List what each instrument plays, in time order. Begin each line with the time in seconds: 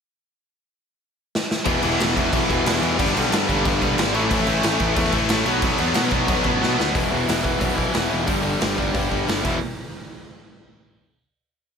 1.35 snare
1.51 snare
1.65 picked electric bass E1, distorted electric guitar E2 B2 E3 G3 B3 E4, kick, crash
1.83 picked electric bass E1, distorted electric guitar E2 B2 E3, crash
1.97 picked electric bass E1, distorted electric guitar E2 B2 E3, crash
2.02 snare
2.16 picked electric bass E1, distorted electric guitar E2 B2 E3, kick, crash
2.32 picked electric bass B1, distorted electric guitar E2 B2 E3, kick, crash
2.49 picked electric bass E1, distorted electric guitar E2 B2 E3, kick, crash
2.65 picked electric bass E1, distorted electric guitar E2 B2 E3, snare, crash
2.81 picked electric bass E2, distorted electric guitar E2 B2 E3, crash
2.98 picked electric bass G1, distorted electric guitar G2 D3 G3 B3 D4, kick, crash
3.14 picked electric bass B1, distorted electric guitar G2 D3 G3, crash
3.32 distorted electric guitar G2 D3 G3, picked electric bass G2, snare, crash
3.48 picked electric bass G1, distorted electric guitar G2 D3 G3, kick, crash
3.65 picked electric bass G1, distorted electric guitar G2 D3 G3, kick, crash
3.82 picked electric bass E1, distorted electric guitar G2 D3 G3, kick, crash
3.97 picked electric bass G#1, distorted electric guitar G2 D3 G3, snare, crash
4.13 picked electric bass A1, distorted electric guitar A2 E3 A3 C#4 E4, crash
4.30 picked electric bass A1, distorted electric guitar A2 E3 A3, kick, crash
4.46 picked electric bass A1, distorted electric guitar A2 E3 A3, crash
4.63 picked electric bass A1, distorted electric guitar A2 E3 A3, snare, crash
4.80 picked electric bass A1, distorted electric guitar A2 E3 A3, kick, crash
4.96 picked electric bass E2, distorted electric guitar A2 E3 A3, kick, crash
5.12 picked electric bass A1, distorted electric guitar A2 E3 A3, kick, crash
5.29 picked electric bass A1, distorted electric guitar A2 E3 A3, snare, crash
5.46 picked electric bass B1, distorted electric guitar B2 F#3 B3 D4 F#4, crash
5.62 picked electric bass B1, distorted electric guitar B2 F#3 B3, kick, crash
5.78 picked electric bass E2, distorted electric guitar B2 F#3 B3, crash
5.94 picked electric bass B2, distorted electric guitar B2 F#3 B3, snare, crash
6.11 picked electric bass B1, distorted electric guitar B2 F#3 B3, kick, crash
6.28 picked electric bass B1, distorted electric guitar B2 F#3 B3, kick, crash
6.44 picked electric bass A1, distorted electric guitar B2 F#3 B3, kick, crash
6.60 picked electric bass B2, distorted electric guitar B2 F#3 B3, snare
6.78 picked electric bass D2, distorted electric guitar B2 F#3 B3, snare
6.94 picked electric bass E1, distorted electric guitar E2 B2 E3, kick, open hi-hat
7.11 picked electric bass E1, distorted electric guitar E2 B2 E3
7.27 picked electric bass E1, distorted electric guitar E2 B2 E3, snare, open hi-hat
7.42 distorted electric guitar E2 B2 E3, kick
7.59 picked electric bass B1, distorted electric guitar E2 B2 E3, kick, open hi-hat
7.75 distorted electric guitar E2 B2 E3, kick
7.92 picked electric bass E1, distorted electric guitar E2 B2 E3, snare, open hi-hat
7.96 distorted electric guitar E2 B2 E3
8.10 picked electric bass E1, distorted electric guitar E2 B2 E3
8.26 picked electric bass G1, distorted electric guitar G2 D3 G3, kick, open hi-hat
8.41 distorted electric guitar G2 D3 G3
8.60 picked electric bass G1, distorted electric guitar G2 D3 G3, snare, open hi-hat
8.77 distorted electric guitar G2 D3 G3, kick
8.92 picked electric bass G1, distorted electric guitar G2 D3 G3, kick, open hi-hat
9.09 distorted electric guitar G2 D3 G3, kick
9.26 distorted electric guitar G2 D3 G3, snare, open hi-hat
9.30 picked electric bass G1
9.42 picked electric bass E1, distorted electric guitar E2 B2 E3, kick, crash